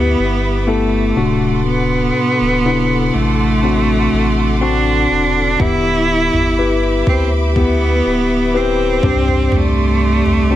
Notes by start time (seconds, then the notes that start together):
Already playing: D2 B3 E4 G4 B4 E5 B5 D6
0.19 G1
0.67 A3 B3 E4 A4
1.16 D1 A2 C3 D4 F#4 A4 F#5 C6
1.67 B3
2.40 D1
2.65 C3 D4 E4
3.14 A1 A3
3.63 C4 D4 F#4
4.13 A1
4.61 C4 D4 F#4
5.11 E1
5.59 D1 D3 B3 E4 G4 E5 B5, kick, floor tom
6.33 G1, floor tom
6.59 E4 G4 B4
7.06 D2 C4, kick, floor tom
7.56 B3 E4 G4, kick, floor tom
8.06 D1
8.54 C4 E4 G4 B4
9.03 C2 G2 C4 D4 G4 D5 C6, kick, floor tom
9.28 floor tom
9.52 C2 A3, floor tom
10.26 C2, floor tom
10.51 C4 D4 F#4